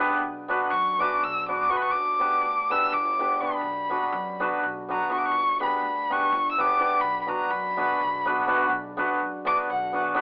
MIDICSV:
0, 0, Header, 1, 4, 480
1, 0, Start_track
1, 0, Key_signature, 2, "minor"
1, 0, Tempo, 485044
1, 197, Time_signature, 7, 3, 24, 8
1, 10105, End_track
2, 0, Start_track
2, 0, Title_t, "Violin"
2, 0, Program_c, 0, 40
2, 703, Note_on_c, 0, 85, 110
2, 986, Note_on_c, 0, 86, 96
2, 1001, Note_off_c, 0, 85, 0
2, 1225, Note_on_c, 0, 88, 100
2, 1239, Note_off_c, 0, 86, 0
2, 1467, Note_off_c, 0, 88, 0
2, 1475, Note_on_c, 0, 86, 94
2, 1685, Note_on_c, 0, 85, 84
2, 1700, Note_off_c, 0, 86, 0
2, 1748, Note_on_c, 0, 83, 69
2, 1763, Note_off_c, 0, 85, 0
2, 1802, Note_on_c, 0, 85, 105
2, 1816, Note_off_c, 0, 83, 0
2, 1896, Note_on_c, 0, 86, 100
2, 1911, Note_off_c, 0, 85, 0
2, 2679, Note_on_c, 0, 88, 100
2, 2694, Note_off_c, 0, 86, 0
2, 2901, Note_on_c, 0, 86, 88
2, 2916, Note_off_c, 0, 88, 0
2, 3369, Note_on_c, 0, 83, 81
2, 3384, Note_off_c, 0, 86, 0
2, 4582, Note_off_c, 0, 83, 0
2, 4867, Note_on_c, 0, 82, 81
2, 5050, Note_off_c, 0, 82, 0
2, 5077, Note_on_c, 0, 85, 90
2, 5126, Note_on_c, 0, 86, 75
2, 5141, Note_off_c, 0, 85, 0
2, 5196, Note_on_c, 0, 85, 117
2, 5211, Note_off_c, 0, 86, 0
2, 5551, Note_off_c, 0, 85, 0
2, 5569, Note_on_c, 0, 83, 91
2, 6058, Note_on_c, 0, 85, 105
2, 6073, Note_off_c, 0, 83, 0
2, 6441, Note_off_c, 0, 85, 0
2, 6447, Note_on_c, 0, 88, 84
2, 6535, Note_on_c, 0, 86, 106
2, 6550, Note_off_c, 0, 88, 0
2, 6937, Note_on_c, 0, 83, 102
2, 6952, Note_off_c, 0, 86, 0
2, 7135, Note_off_c, 0, 83, 0
2, 7141, Note_on_c, 0, 83, 68
2, 7211, Note_on_c, 0, 82, 84
2, 7225, Note_off_c, 0, 83, 0
2, 7428, Note_on_c, 0, 83, 97
2, 7443, Note_off_c, 0, 82, 0
2, 8606, Note_off_c, 0, 83, 0
2, 9368, Note_on_c, 0, 86, 111
2, 9470, Note_off_c, 0, 86, 0
2, 9606, Note_on_c, 0, 78, 81
2, 9836, Note_off_c, 0, 78, 0
2, 10105, End_track
3, 0, Start_track
3, 0, Title_t, "Hammered dulcimer"
3, 0, Program_c, 1, 15
3, 0, Note_on_c, 1, 59, 90
3, 0, Note_on_c, 1, 62, 65
3, 3, Note_on_c, 1, 67, 70
3, 6, Note_on_c, 1, 71, 88
3, 165, Note_off_c, 1, 59, 0
3, 168, Note_off_c, 1, 62, 0
3, 174, Note_off_c, 1, 67, 0
3, 175, Note_off_c, 1, 71, 0
3, 478, Note_on_c, 1, 59, 75
3, 488, Note_on_c, 1, 62, 83
3, 492, Note_on_c, 1, 66, 67
3, 500, Note_on_c, 1, 71, 90
3, 665, Note_off_c, 1, 59, 0
3, 671, Note_off_c, 1, 62, 0
3, 672, Note_off_c, 1, 66, 0
3, 676, Note_off_c, 1, 71, 0
3, 976, Note_on_c, 1, 59, 67
3, 993, Note_on_c, 1, 66, 67
3, 994, Note_on_c, 1, 62, 64
3, 1002, Note_on_c, 1, 71, 89
3, 1166, Note_off_c, 1, 59, 0
3, 1174, Note_off_c, 1, 66, 0
3, 1175, Note_off_c, 1, 62, 0
3, 1179, Note_off_c, 1, 71, 0
3, 1466, Note_on_c, 1, 59, 71
3, 1470, Note_on_c, 1, 62, 64
3, 1473, Note_on_c, 1, 66, 59
3, 1483, Note_on_c, 1, 71, 79
3, 1644, Note_off_c, 1, 59, 0
3, 1645, Note_off_c, 1, 62, 0
3, 1647, Note_off_c, 1, 66, 0
3, 1652, Note_off_c, 1, 71, 0
3, 1677, Note_on_c, 1, 59, 60
3, 1683, Note_on_c, 1, 62, 52
3, 1687, Note_on_c, 1, 66, 58
3, 1699, Note_on_c, 1, 71, 74
3, 1857, Note_off_c, 1, 59, 0
3, 1860, Note_off_c, 1, 62, 0
3, 1862, Note_off_c, 1, 66, 0
3, 1868, Note_off_c, 1, 71, 0
3, 2173, Note_on_c, 1, 59, 68
3, 2181, Note_on_c, 1, 62, 50
3, 2185, Note_on_c, 1, 67, 57
3, 2190, Note_on_c, 1, 71, 69
3, 2359, Note_off_c, 1, 59, 0
3, 2363, Note_off_c, 1, 62, 0
3, 2364, Note_off_c, 1, 67, 0
3, 2367, Note_off_c, 1, 71, 0
3, 2672, Note_on_c, 1, 59, 68
3, 2681, Note_on_c, 1, 62, 68
3, 2684, Note_on_c, 1, 67, 59
3, 2686, Note_on_c, 1, 71, 85
3, 2859, Note_off_c, 1, 59, 0
3, 2863, Note_off_c, 1, 62, 0
3, 2864, Note_off_c, 1, 67, 0
3, 2866, Note_off_c, 1, 71, 0
3, 3156, Note_on_c, 1, 59, 67
3, 3164, Note_on_c, 1, 62, 57
3, 3172, Note_on_c, 1, 67, 63
3, 3175, Note_on_c, 1, 71, 66
3, 3332, Note_off_c, 1, 59, 0
3, 3336, Note_off_c, 1, 62, 0
3, 3340, Note_off_c, 1, 67, 0
3, 3342, Note_off_c, 1, 71, 0
3, 3376, Note_on_c, 1, 59, 57
3, 3379, Note_on_c, 1, 62, 53
3, 3388, Note_on_c, 1, 67, 57
3, 3394, Note_on_c, 1, 71, 59
3, 3550, Note_off_c, 1, 59, 0
3, 3552, Note_off_c, 1, 62, 0
3, 3556, Note_off_c, 1, 67, 0
3, 3559, Note_off_c, 1, 71, 0
3, 3855, Note_on_c, 1, 59, 63
3, 3865, Note_on_c, 1, 66, 56
3, 3866, Note_on_c, 1, 62, 61
3, 3873, Note_on_c, 1, 71, 64
3, 4042, Note_off_c, 1, 59, 0
3, 4047, Note_off_c, 1, 66, 0
3, 4048, Note_off_c, 1, 62, 0
3, 4052, Note_off_c, 1, 71, 0
3, 4352, Note_on_c, 1, 59, 79
3, 4357, Note_on_c, 1, 62, 71
3, 4365, Note_on_c, 1, 66, 79
3, 4370, Note_on_c, 1, 71, 90
3, 4541, Note_off_c, 1, 59, 0
3, 4543, Note_off_c, 1, 62, 0
3, 4547, Note_off_c, 1, 66, 0
3, 4550, Note_off_c, 1, 71, 0
3, 4835, Note_on_c, 1, 59, 64
3, 4846, Note_on_c, 1, 62, 61
3, 4851, Note_on_c, 1, 66, 63
3, 4858, Note_on_c, 1, 71, 82
3, 5013, Note_off_c, 1, 59, 0
3, 5019, Note_off_c, 1, 62, 0
3, 5021, Note_off_c, 1, 66, 0
3, 5025, Note_off_c, 1, 71, 0
3, 5044, Note_on_c, 1, 59, 71
3, 5055, Note_on_c, 1, 62, 53
3, 5060, Note_on_c, 1, 66, 50
3, 5060, Note_on_c, 1, 71, 62
3, 5225, Note_off_c, 1, 59, 0
3, 5230, Note_off_c, 1, 62, 0
3, 5233, Note_off_c, 1, 66, 0
3, 5233, Note_off_c, 1, 71, 0
3, 5545, Note_on_c, 1, 59, 68
3, 5547, Note_on_c, 1, 62, 63
3, 5553, Note_on_c, 1, 67, 57
3, 5559, Note_on_c, 1, 71, 66
3, 5727, Note_off_c, 1, 59, 0
3, 5728, Note_off_c, 1, 62, 0
3, 5731, Note_off_c, 1, 67, 0
3, 5734, Note_off_c, 1, 71, 0
3, 6040, Note_on_c, 1, 59, 69
3, 6045, Note_on_c, 1, 62, 69
3, 6050, Note_on_c, 1, 67, 66
3, 6057, Note_on_c, 1, 71, 81
3, 6224, Note_off_c, 1, 59, 0
3, 6227, Note_off_c, 1, 62, 0
3, 6229, Note_off_c, 1, 67, 0
3, 6233, Note_off_c, 1, 71, 0
3, 6512, Note_on_c, 1, 59, 76
3, 6515, Note_on_c, 1, 62, 63
3, 6524, Note_on_c, 1, 67, 65
3, 6530, Note_on_c, 1, 71, 76
3, 6690, Note_off_c, 1, 59, 0
3, 6691, Note_off_c, 1, 62, 0
3, 6696, Note_off_c, 1, 67, 0
3, 6699, Note_off_c, 1, 71, 0
3, 6726, Note_on_c, 1, 59, 67
3, 6728, Note_on_c, 1, 62, 60
3, 6735, Note_on_c, 1, 67, 60
3, 6738, Note_on_c, 1, 71, 72
3, 6905, Note_off_c, 1, 59, 0
3, 6905, Note_off_c, 1, 62, 0
3, 6909, Note_off_c, 1, 67, 0
3, 6910, Note_off_c, 1, 71, 0
3, 7192, Note_on_c, 1, 59, 65
3, 7200, Note_on_c, 1, 62, 55
3, 7205, Note_on_c, 1, 66, 63
3, 7215, Note_on_c, 1, 71, 74
3, 7389, Note_off_c, 1, 59, 0
3, 7392, Note_off_c, 1, 62, 0
3, 7395, Note_off_c, 1, 66, 0
3, 7400, Note_off_c, 1, 71, 0
3, 7689, Note_on_c, 1, 59, 77
3, 7694, Note_on_c, 1, 62, 67
3, 7697, Note_on_c, 1, 66, 67
3, 7706, Note_on_c, 1, 71, 80
3, 7885, Note_off_c, 1, 59, 0
3, 7888, Note_off_c, 1, 62, 0
3, 7889, Note_off_c, 1, 66, 0
3, 7894, Note_off_c, 1, 71, 0
3, 8166, Note_on_c, 1, 59, 80
3, 8178, Note_on_c, 1, 62, 79
3, 8181, Note_on_c, 1, 66, 75
3, 8187, Note_on_c, 1, 71, 94
3, 8353, Note_off_c, 1, 59, 0
3, 8359, Note_off_c, 1, 62, 0
3, 8361, Note_off_c, 1, 66, 0
3, 8364, Note_off_c, 1, 71, 0
3, 8386, Note_on_c, 1, 59, 74
3, 8390, Note_on_c, 1, 62, 76
3, 8391, Note_on_c, 1, 66, 70
3, 8399, Note_on_c, 1, 71, 97
3, 8570, Note_off_c, 1, 59, 0
3, 8572, Note_off_c, 1, 62, 0
3, 8573, Note_off_c, 1, 66, 0
3, 8576, Note_off_c, 1, 71, 0
3, 8875, Note_on_c, 1, 59, 82
3, 8884, Note_on_c, 1, 62, 73
3, 8891, Note_on_c, 1, 66, 70
3, 8896, Note_on_c, 1, 71, 93
3, 9065, Note_off_c, 1, 59, 0
3, 9070, Note_off_c, 1, 62, 0
3, 9073, Note_off_c, 1, 66, 0
3, 9075, Note_off_c, 1, 71, 0
3, 9351, Note_on_c, 1, 59, 78
3, 9360, Note_on_c, 1, 62, 67
3, 9365, Note_on_c, 1, 66, 64
3, 9373, Note_on_c, 1, 71, 83
3, 9551, Note_off_c, 1, 59, 0
3, 9555, Note_off_c, 1, 62, 0
3, 9558, Note_off_c, 1, 66, 0
3, 9562, Note_off_c, 1, 71, 0
3, 9822, Note_on_c, 1, 59, 69
3, 9834, Note_on_c, 1, 62, 62
3, 9838, Note_on_c, 1, 66, 71
3, 9848, Note_on_c, 1, 71, 78
3, 10015, Note_off_c, 1, 59, 0
3, 10021, Note_off_c, 1, 62, 0
3, 10023, Note_off_c, 1, 66, 0
3, 10028, Note_off_c, 1, 71, 0
3, 10039, Note_on_c, 1, 59, 94
3, 10040, Note_on_c, 1, 62, 75
3, 10051, Note_on_c, 1, 66, 69
3, 10057, Note_on_c, 1, 71, 97
3, 10105, Note_off_c, 1, 59, 0
3, 10105, Note_off_c, 1, 62, 0
3, 10105, Note_off_c, 1, 66, 0
3, 10105, Note_off_c, 1, 71, 0
3, 10105, End_track
4, 0, Start_track
4, 0, Title_t, "Upright bass"
4, 0, Program_c, 2, 32
4, 206, Note_on_c, 2, 35, 88
4, 505, Note_off_c, 2, 35, 0
4, 696, Note_on_c, 2, 42, 111
4, 999, Note_off_c, 2, 42, 0
4, 1215, Note_on_c, 2, 35, 109
4, 1623, Note_off_c, 2, 35, 0
4, 1891, Note_on_c, 2, 31, 87
4, 2192, Note_off_c, 2, 31, 0
4, 2387, Note_on_c, 2, 38, 102
4, 2689, Note_off_c, 2, 38, 0
4, 2891, Note_on_c, 2, 31, 115
4, 3303, Note_off_c, 2, 31, 0
4, 3573, Note_on_c, 2, 35, 101
4, 3875, Note_off_c, 2, 35, 0
4, 4081, Note_on_c, 2, 42, 116
4, 4380, Note_off_c, 2, 42, 0
4, 4584, Note_on_c, 2, 35, 112
4, 4992, Note_off_c, 2, 35, 0
4, 5261, Note_on_c, 2, 31, 110
4, 5560, Note_off_c, 2, 31, 0
4, 5758, Note_on_c, 2, 38, 98
4, 6058, Note_off_c, 2, 38, 0
4, 6257, Note_on_c, 2, 31, 117
4, 6665, Note_off_c, 2, 31, 0
4, 6925, Note_on_c, 2, 35, 97
4, 7227, Note_off_c, 2, 35, 0
4, 7426, Note_on_c, 2, 42, 110
4, 7727, Note_off_c, 2, 42, 0
4, 7923, Note_on_c, 2, 35, 104
4, 8333, Note_off_c, 2, 35, 0
4, 8603, Note_on_c, 2, 35, 119
4, 8903, Note_off_c, 2, 35, 0
4, 9103, Note_on_c, 2, 42, 103
4, 9401, Note_off_c, 2, 42, 0
4, 9596, Note_on_c, 2, 35, 106
4, 10003, Note_off_c, 2, 35, 0
4, 10105, End_track
0, 0, End_of_file